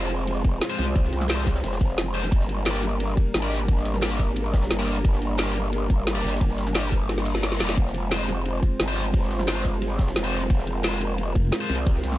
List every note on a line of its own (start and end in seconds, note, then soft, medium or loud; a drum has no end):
0.00 0.43 F1 loud
0.00 2.28 G#3 medium
0.00 2.28 C4 medium
0.00 2.28 F4 medium
0.00 2.28 C5 medium
0.00 shaker soft
0.10 closed hi-hat medium
0.10 ride medium
0.10 shaker medium
0.27 closed hi-hat medium
0.27 ride medium
0.36 shaker soft
0.45 0.60 F1 loud
0.45 kick loud
0.45 closed hi-hat medium
0.45 ride medium
0.45 shaker medium
0.61 snare loud
0.61 closed hi-hat medium
0.61 ride medium
0.70 0.84 G#3 medium
0.70 0.84 F4 medium
0.70 0.84 C5 medium
0.78 1.11 C2 loud
0.78 snare medium
0.78 closed hi-hat medium
0.78 ride medium
0.78 shaker medium
0.95 kick loud
0.95 closed hi-hat medium
0.95 ride medium
1.04 snare soft
1.12 1.62 C2 loud
1.12 snare medium
1.12 closed hi-hat medium
1.12 ride medium
1.12 shaker medium
1.21 snare medium
1.29 1.44 G#3 medium
1.29 1.44 F4 medium
1.29 1.44 C5 medium
1.29 snare loud
1.29 closed hi-hat medium
1.29 ride medium
1.38 snare soft
1.38 shaker soft
1.46 kick medium
1.46 snare loud
1.46 snare soft
1.46 open hi-hat medium
1.46 ride medium
1.46 shaker medium
1.56 snare loud
1.56 ride medium
1.64 1.79 F1 medium
1.64 snare loud
1.64 closed hi-hat medium
1.64 ride medium
1.72 snare loud
1.72 ride medium
1.72 shaker soft
1.81 2.31 F1 medium
1.81 kick loud
1.81 closed hi-hat medium
1.81 ride medium
1.81 shaker medium
1.89 snare soft
1.98 snare loud
1.98 closed hi-hat medium
1.98 ride medium
2.15 2.24 G#3 medium
2.15 2.24 F4 medium
2.15 2.24 C5 medium
2.15 closed hi-hat medium
2.15 ride medium
2.15 shaker medium
2.23 snare soft
2.32 3.16 G1 loud
2.32 7.73 G3 medium
2.32 7.73 A#3 medium
2.32 7.73 D4 medium
2.32 7.73 A#4 medium
2.32 kick loud
2.32 closed hi-hat medium
2.32 ride medium
2.41 snare medium
2.49 closed hi-hat medium
2.49 ride medium
2.49 shaker medium
2.66 2.80 A#3 medium
2.66 2.80 G4 medium
2.66 2.80 D5 medium
2.66 snare loud
2.66 closed hi-hat medium
2.66 ride medium
2.75 shaker soft
2.83 snare soft
2.83 closed hi-hat medium
2.83 ride medium
2.83 shaker medium
3.00 closed hi-hat medium
3.00 ride loud
3.09 shaker soft
3.17 kick loud
3.17 closed hi-hat medium
3.17 shaker medium
3.34 4.69 G#1 medium
3.34 snare loud
3.34 closed hi-hat medium
3.34 ride medium
3.43 3.57 A#3 medium
3.43 3.57 G4 medium
3.43 3.57 D5 medium
3.51 snare medium
3.51 closed hi-hat medium
3.51 ride medium
3.51 shaker medium
3.68 kick loud
3.68 closed hi-hat medium
3.68 ride medium
3.77 snare soft
3.85 snare soft
3.85 closed hi-hat medium
3.85 ride medium
3.85 shaker medium
3.94 snare medium
4.02 4.16 A#3 medium
4.02 4.16 G4 medium
4.02 4.16 D5 medium
4.02 snare loud
4.02 closed hi-hat medium
4.02 ride loud
4.11 snare soft
4.11 shaker soft
4.19 kick medium
4.19 open hi-hat medium
4.19 ride medium
4.19 shaker medium
4.36 closed hi-hat medium
4.36 ride medium
4.45 shaker soft
4.54 kick loud
4.54 snare loud
4.54 closed hi-hat medium
4.54 ride medium
4.54 shaker medium
4.62 snare loud
4.62 ride medium
4.70 5.03 G1 medium
4.70 snare loud
4.70 closed hi-hat loud
4.70 ride medium
4.79 4.93 A#3 medium
4.79 4.93 G4 medium
4.79 4.93 D5 medium
4.79 snare loud
4.79 ride medium
4.87 closed hi-hat medium
4.87 ride medium
4.87 shaker medium
4.96 snare soft
5.04 5.89 G1 loud
5.04 kick loud
5.04 closed hi-hat loud
5.04 ride medium
5.13 snare medium
5.22 closed hi-hat medium
5.22 ride medium
5.22 shaker medium
5.38 5.53 A#3 medium
5.38 5.53 G4 medium
5.38 5.53 D5 medium
5.38 snare loud
5.38 closed hi-hat loud
5.38 ride medium
5.47 shaker soft
5.56 snare soft
5.56 closed hi-hat medium
5.56 ride medium
5.56 shaker medium
5.73 closed hi-hat medium
5.73 ride medium
5.81 shaker soft
5.90 6.23 G#1 medium
5.90 kick loud
5.90 closed hi-hat medium
5.90 ride medium
5.90 shaker medium
6.07 snare loud
6.07 closed hi-hat loud
6.07 ride loud
6.15 6.30 A#3 medium
6.15 6.30 G4 medium
6.15 6.30 D5 medium
6.24 7.59 G1 medium
6.24 snare loud
6.24 closed hi-hat medium
6.24 ride medium
6.24 shaker medium
6.28 snare loud
6.28 ride medium
6.33 snare medium
6.33 ride medium
6.37 snare medium
6.37 ride medium
6.41 kick loud
6.41 closed hi-hat loud
6.41 ride medium
6.50 snare soft
6.58 snare medium
6.58 closed hi-hat medium
6.58 ride medium
6.58 shaker medium
6.67 snare medium
6.75 6.89 A#3 medium
6.75 6.89 G4 medium
6.75 6.89 D5 medium
6.75 snare loud
6.75 closed hi-hat loud
6.75 ride medium
6.83 snare soft
6.83 shaker soft
6.92 kick medium
6.92 snare soft
6.92 open hi-hat medium
6.92 ride medium
6.92 shaker medium
7.09 snare medium
7.09 closed hi-hat loud
7.09 ride medium
7.09 reverse cymbal medium
7.18 snare medium
7.18 shaker soft
7.25 closed hi-hat medium
7.25 ride medium
7.25 shaker medium
7.35 snare medium
7.35 snare soft
7.43 snare loud
7.43 snare medium
7.43 closed hi-hat loud
7.43 ride medium
7.43 shaker soft
7.52 snare medium
7.60 7.76 F1 loud
7.60 7.69 A#3 medium
7.60 7.69 G4 medium
7.60 7.69 D5 medium
7.60 snare loud
7.60 closed hi-hat medium
7.60 ride medium
7.60 shaker medium
7.69 snare medium
7.77 8.61 F1 loud
7.77 12.18 G#3 medium
7.77 12.18 C4 medium
7.77 12.18 F4 medium
7.77 10.47 C5 medium
7.77 kick loud
7.77 closed hi-hat loud
7.77 ride medium
7.87 snare medium
7.94 closed hi-hat medium
7.94 ride medium
7.94 shaker medium
8.11 8.26 G#3 medium
8.11 8.25 F4 medium
8.11 8.26 C5 medium
8.11 snare loud
8.11 closed hi-hat loud
8.11 ride loud
8.20 shaker soft
8.29 snare soft
8.29 closed hi-hat medium
8.29 ride medium
8.29 shaker medium
8.45 closed hi-hat loud
8.45 ride medium
8.54 shaker soft
8.63 kick loud
8.63 closed hi-hat medium
8.63 shaker medium
8.79 10.15 G1 loud
8.79 snare loud
8.79 closed hi-hat medium
8.79 ride medium
8.88 9.02 G#3 medium
8.88 9.02 F4 medium
8.88 9.02 C5 medium
8.96 snare soft
8.96 closed hi-hat medium
8.96 ride medium
8.96 shaker medium
9.13 kick loud
9.13 closed hi-hat medium
9.13 ride loud
9.23 snare medium
9.31 snare medium
9.31 closed hi-hat medium
9.31 ride medium
9.31 shaker medium
9.39 snare medium
9.47 9.62 G#3 medium
9.47 9.62 F4 medium
9.47 9.62 C5 medium
9.47 snare loud
9.47 closed hi-hat loud
9.47 ride medium
9.56 snare soft
9.56 shaker soft
9.65 kick medium
9.65 open hi-hat medium
9.65 ride medium
9.65 shaker medium
9.82 closed hi-hat medium
9.82 ride medium
9.90 shaker soft
9.99 kick loud
9.99 snare loud
9.99 closed hi-hat medium
9.99 ride medium
9.99 shaker medium
10.07 snare loud
10.07 ride medium
10.16 10.49 F1 loud
10.16 snare loud
10.16 closed hi-hat medium
10.16 ride medium
10.24 10.39 G#3 medium
10.24 10.39 F4 medium
10.24 10.39 C5 medium
10.24 snare loud
10.24 ride medium
10.33 closed hi-hat medium
10.33 ride medium
10.33 shaker medium
10.42 snare medium
10.42 snare soft
10.50 11.34 F1 loud
10.50 12.18 A#4 medium
10.50 kick loud
10.50 closed hi-hat medium
10.50 ride loud
10.59 snare soft
10.67 closed hi-hat medium
10.67 ride medium
10.67 shaker medium
10.84 10.98 G#3 medium
10.84 10.98 F4 medium
10.84 10.98 C5 medium
10.84 snare loud
10.84 closed hi-hat medium
10.84 ride medium
10.93 shaker soft
11.01 closed hi-hat medium
11.01 ride medium
11.01 shaker medium
11.18 closed hi-hat medium
11.18 ride medium
11.27 shaker soft
11.35 11.51 F1 loud
11.35 kick loud
11.35 closed hi-hat medium
11.35 ride medium
11.35 shaker medium
11.52 snare loud
11.52 closed hi-hat medium
11.52 ride loud
11.61 11.75 G#3 medium
11.61 11.75 F4 medium
11.61 11.75 C5 medium
11.69 12.02 C2 loud
11.69 snare medium
11.69 closed hi-hat medium
11.69 ride medium
11.69 shaker medium
11.87 kick loud
11.87 closed hi-hat medium
11.87 ride medium
11.96 snare medium
12.03 12.18 C2 loud
12.03 snare medium
12.03 closed hi-hat medium
12.03 ride medium
12.03 shaker medium
12.12 snare medium